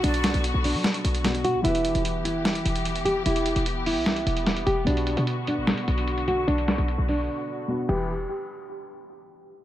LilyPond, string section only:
\new Staff \with { instrumentName = "String section" } { \time 4/4 \key e \minor \tempo 4 = 149 << { <d fis'>1 | <e g'>1~ | <e g'>1 | <d fis'>1~ |
<d fis'>2.~ <d fis'>8 <e b g'>8 | r1 | } \\ { b1 | b1~ | b1~ | b1~ |
b2.~ b8 r8 | r1 | } >> }